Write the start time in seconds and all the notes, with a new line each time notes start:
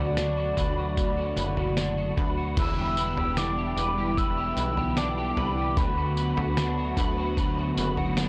Already playing: D2 B2 D3 F#3 A3 D4 F#4 B4 D5
0.17 D4, snare, tambourine
0.37 F#4
0.57 D2 B4, kick, tambourine
0.77 F#4
0.97 D3 B4, kick, floor tom, tambourine
1.17 F#4
1.37 F#1 B4, tambourine
1.57 F#4, floor tom
1.77 D4, snare, tambourine
1.97 F#4
2.17 D2 B4, kick, floor tom
2.37 F#4
2.57 E1 D3 E3 G3 B3 E4 B4 E6, kick, floor tom, crash, tambourine
2.77 G4
2.97 B4, tambourine
3.17 E1 G4, floor tom
3.37 D4 D6, snare, tambourine
3.58 G4
3.77 E1 B4, tambourine
3.98 G4
4.17 E3 B4 E6, kick, tambourine
4.37 G4
4.57 B1 B4, tambourine
4.77 G4, floor tom
4.97 D4 D6, snare, tambourine
5.18 G4
5.37 C2 B4, floor tom
5.57 G4
5.77 D2 D3 F#3 A3 F#4 B4 B5, kick, floor tom, tambourine
5.97 F#4
6.17 B4, tambourine
6.37 D2 F#4, floor tom
6.57 D4, snare, tambourine
6.78 F#4
6.97 D2 B4, kick, tambourine
7.17 F#4
7.37 D3 B4, kick, tambourine
7.57 F#4
7.77 F#1 B4, tambourine
7.97 F#4, floor tom
8.17 D4, snare, tambourine